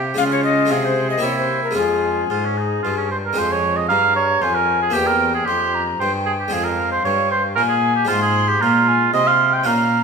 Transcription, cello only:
0.00 0.18 C3 medium
0.19 0.73 C#3 medium
0.71 1.22 C3 medium
1.23 1.75 C3 medium
1.76 2.29 F2 medium
2.30 2.83 G#2 medium
2.84 3.36 G2 medium
3.37 3.91 F2 medium
3.90 4.42 G2 medium
4.43 4.94 F2 medium
4.95 5.46 E2 medium
5.47 5.99 F2 medium
6.00 6.51 G2 medium
6.52 7.04 F2 medium
7.05 7.58 G2 medium
7.56 8.09 A#2 medium
8.10 8.60 G#2 medium
8.62 9.13 A#2 medium
9.14 9.68 C3 medium
9.66 10.04 A#2 medium

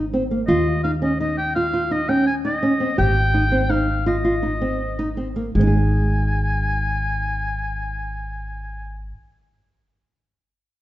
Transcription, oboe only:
0.47 0.81 D#5 medium
0.84 0.92 F5 medium
1.03 1.19 D#5 medium
1.20 1.37 D#5 medium
1.38 1.54 G5 loud
1.55 1.93 F5 loud
1.92 2.10 D#5 loud
2.09 2.26 G5 loud
2.27 2.35 G#5 loud
2.46 2.95 D#5 loud
2.98 3.72 G5 loud
3.70 4.06 F5 loud
4.07 5.14 D#5 medium
5.57 8.99 G#5 loud

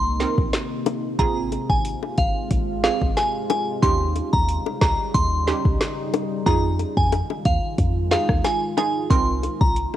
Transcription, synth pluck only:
0.20 0.40 C4 medium
0.20 0.40 D#4 medium
0.20 0.41 A#4 medium
1.19 1.80 C4 medium
1.19 1.80 F4 medium
1.19 1.80 G#4 loud
2.84 3.04 C4 medium
2.84 3.04 F4 medium
2.84 3.04 G#4 medium
3.83 4.44 C#4 loud
3.83 4.44 D#4 medium
3.83 4.44 G4 loud
5.47 5.68 C#4 medium
5.47 5.68 D#4 medium
5.47 5.68 G4 medium
6.46 7.07 D#4 loud
6.46 7.07 F4 medium
6.46 7.08 G#4 loud
8.11 8.31 D#4 medium
8.11 8.32 F4 medium
8.11 8.32 G#4 medium
8.77 9.08 D#4 medium
8.77 9.08 F4 medium
8.77 9.08 G#4 medium
9.10 9.71 C4 loud
9.10 9.71 D#4 medium
9.10 9.71 A#4 loud

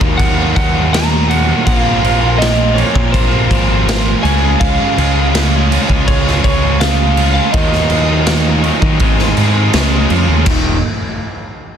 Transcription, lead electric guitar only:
0.00 0.23 C#5 medium
0.17 0.53 F#5 loud
0.56 0.90 F#5 loud
0.93 1.27 A#5 loud
1.29 1.64 F#5 medium
1.67 2.36 F5 loud
2.38 2.77 D#5 loud
2.74 3.12 C#5 medium
3.12 4.26 C5 medium
4.23 4.61 G#5 medium
4.60 6.03 F5 loud
6.07 6.43 C#5 medium
6.44 6.78 C#5 medium
6.80 7.32 F5 loud
7.34 7.52 F5 medium
7.52 8.99 D#5 loud

